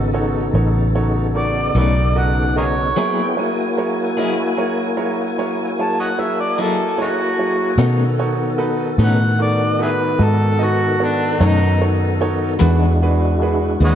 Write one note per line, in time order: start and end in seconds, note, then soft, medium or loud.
0.00 0.49 G#1 medium
0.00 2.91 C#3 medium
0.00 2.91 B3 medium
0.00 2.91 D#4 medium
0.00 2.91 A4 medium
0.13 0.43 D#4 medium
0.13 0.44 F#4 medium
0.13 0.44 A4 medium
0.13 0.44 C#5 medium
0.54 1.71 A1 medium
0.54 0.84 D#4 medium
0.54 0.84 F#4 soft
0.54 0.84 A4 soft
0.54 0.84 C#5 medium
0.95 1.25 D#4 medium
0.95 1.25 F#4 medium
0.95 1.25 A4 soft
0.95 1.25 C#5 medium
1.35 1.65 D#4 soft
1.35 1.65 F#4 soft
1.35 1.65 A4 soft
1.35 1.75 D5 medium
1.35 1.65 C#6 medium
1.75 2.92 B1 medium
1.75 2.00 B2 soft
1.75 1.99 A3 medium
1.75 1.99 C#4 medium
1.75 1.99 D#4 medium
1.75 2.05 D#4 medium
1.75 2.05 F#4 soft
1.75 2.06 A4 soft
1.75 2.06 B4 medium
1.75 2.20 D5 medium
2.15 2.45 D#4 medium
2.15 2.45 F#4 soft
2.15 2.46 A4 soft
2.15 2.46 D#5 medium
2.15 2.56 F#5 medium
2.56 2.86 D#4 medium
2.56 2.86 F#4 soft
2.56 2.66 G#4 medium
2.56 2.86 A4 soft
2.56 2.65 A#4 medium
2.56 3.35 C#5 medium
2.56 2.86 D#5 medium
2.96 3.20 F#3 medium
2.96 3.26 F#3 soft
2.96 3.20 A#3 medium
2.96 3.36 B3 medium
2.96 3.26 E4 soft
2.96 3.36 E4 medium
2.96 3.21 E4 medium
2.96 3.36 G#4 soft
2.96 3.26 G#4 medium
2.96 3.21 G#4 medium
2.96 3.26 A#4 soft
2.96 3.27 C#5 medium
2.96 3.36 G5 medium
3.36 3.66 F#3 soft
3.36 7.77 A#3 medium
3.36 3.66 E4 soft
3.36 7.76 E4 medium
3.36 7.76 F#4 medium
3.36 3.66 G#4 soft
3.36 3.67 A#4 soft
3.36 3.67 C#5 medium
3.36 7.76 G#5 medium
3.77 4.07 F#3 medium
3.77 4.07 E4 soft
3.77 4.07 G#4 soft
3.77 4.07 A#4 medium
3.77 4.07 C#5 medium
4.17 4.47 F#3 medium
4.17 4.42 F#3 soft
4.17 4.41 A#3 medium
4.17 4.47 E4 medium
4.17 4.41 E4 medium
4.17 4.41 G#4 medium
4.17 4.47 G#4 medium
4.17 4.47 A#4 medium
4.17 4.47 D#5 medium
4.57 4.87 F#3 medium
4.57 4.87 E4 medium
4.57 4.87 G#4 medium
4.57 4.87 A#4 medium
4.57 4.88 C#5 medium
4.97 5.27 F#3 medium
4.97 5.27 E4 medium
4.97 5.27 G#4 medium
4.97 5.27 A#4 soft
4.97 5.27 C#5 medium
5.38 5.68 F#3 soft
5.38 5.68 E4 soft
5.38 5.68 G#4 medium
5.38 5.68 A#4 soft
5.38 5.68 C#5 medium
5.79 6.08 F#3 soft
5.79 6.08 E4 soft
5.79 6.08 G#4 soft
5.79 6.09 A#4 soft
5.79 6.09 C#5 soft
5.79 5.98 A5 medium
6.00 6.06 C#5 medium
6.00 6.09 D#5 medium
6.00 6.22 F#5 medium
6.18 6.48 F#3 soft
6.18 6.48 E4 soft
6.18 6.48 G#4 soft
6.18 6.48 A#4 soft
6.18 6.48 C#5 soft
6.18 6.38 E5 medium
6.40 6.58 D5 medium
6.58 6.88 F#3 medium
6.58 6.83 F#3 soft
6.58 6.88 A#3 soft
6.58 6.83 A#3 soft
6.58 6.88 E4 soft
6.58 6.82 E4 medium
6.58 6.82 G#4 medium
6.58 6.99 A4 medium
6.58 6.88 D#5 medium
6.58 6.88 G#5 soft
6.98 7.28 F#3 soft
6.98 7.10 C#4 medium
6.98 7.08 D#4 medium
6.98 7.28 E4 soft
6.98 7.78 F#4 medium
6.98 7.28 G#4 soft
6.98 7.28 A#4 soft
6.98 7.29 C#5 medium
7.39 7.69 F#3 soft
7.39 7.69 E4 soft
7.39 7.69 G#4 soft
7.39 7.69 A#4 soft
7.39 7.69 C#5 medium
7.78 8.95 B2 medium
7.78 8.03 B2 medium
7.78 12.57 D#3 medium
7.78 8.03 A3 medium
7.78 12.57 B3 medium
7.78 8.03 C#4 medium
7.78 8.09 D#4 medium
7.78 8.03 D#4 medium
7.78 8.09 F#4 medium
7.78 12.57 A4 medium
7.78 8.09 A4 medium
7.78 8.09 C#5 medium
8.19 8.49 D#4 medium
8.19 8.49 F#4 medium
8.19 8.50 A4 medium
8.19 8.50 C#5 medium
8.58 8.89 D#4 medium
8.58 8.89 F#4 medium
8.58 8.89 A4 medium
8.58 8.89 B4 medium
8.98 10.16 A2 medium
8.98 9.24 B2 soft
8.98 9.24 A3 medium
8.98 9.24 C#4 medium
8.98 9.29 D#4 medium
8.98 9.23 D#4 medium
8.98 9.29 F#4 soft
8.98 9.30 A4 soft
8.98 9.30 B4 medium
9.03 9.40 F#5 medium
9.39 9.69 D#4 medium
9.39 9.70 F#4 soft
9.39 9.70 A4 soft
9.39 9.80 D5 medium
9.39 9.70 C#6 medium
9.79 10.10 D#4 medium
9.79 9.89 E4 medium
9.79 10.10 F#4 soft
9.79 9.91 G#4 medium
9.79 10.10 A4 soft
9.79 10.10 B4 medium
9.79 10.25 B4 medium
10.19 11.37 G#2 medium
10.19 10.50 D#4 medium
10.19 10.50 F#4 soft
10.19 10.50 A4 soft
10.19 10.50 D#5 medium
10.24 10.66 A4 medium
10.59 10.90 D#4 medium
10.59 10.90 F#4 soft
10.59 10.90 A4 soft
10.59 10.90 D#5 medium
10.64 11.01 F#4 loud
11.00 11.30 B3 soft
11.00 11.31 F#4 soft
11.00 11.31 A4 soft
11.00 11.31 C#5 medium
11.04 11.42 D4 medium
11.40 12.58 F#2 medium
11.40 11.65 B2 medium
11.40 11.65 A3 medium
11.40 11.65 C#4 medium
11.40 11.71 D#4 medium
11.40 11.65 D#4 medium
11.40 11.71 F#4 soft
11.40 11.71 A4 medium
11.40 11.71 C#5 medium
11.46 11.83 D#4 medium
11.80 12.11 D#4 medium
11.80 12.11 F#4 medium
11.80 12.11 A4 soft
11.80 12.12 C#5 medium
12.21 12.51 D#4 medium
12.21 12.51 F#4 medium
12.21 12.52 A4 medium
12.21 12.52 C#5 medium
12.59 13.78 E2 medium
12.59 12.85 E3 medium
12.59 12.85 G#3 medium
12.59 13.95 G#3 medium
12.59 12.85 D4 medium
12.59 12.91 D4 medium
12.59 13.95 D4 medium
12.59 13.95 E4 medium
12.59 12.85 F#4 medium
12.59 12.91 F#4 medium
12.59 13.95 F#4 medium
12.59 12.91 G#4 medium
12.59 12.92 B4 medium
13.02 13.32 D4 medium
13.02 13.32 F#4 medium
13.02 13.32 G#4 medium
13.02 13.33 B4 medium
13.42 13.72 D4 medium
13.42 13.72 F#4 medium
13.42 13.72 G#4 medium
13.42 13.73 B4 medium
13.81 13.95 D#2 medium
13.81 13.95 E3 medium
13.81 13.95 G#3 medium
13.81 13.95 D4 soft
13.81 13.95 D4 medium
13.81 13.95 F#4 medium
13.81 13.95 F#4 soft
13.81 13.95 G#4 soft
13.81 13.95 B4 medium
13.85 13.91 C#5 medium
13.85 13.94 D#5 medium
13.85 13.95 F#5 loud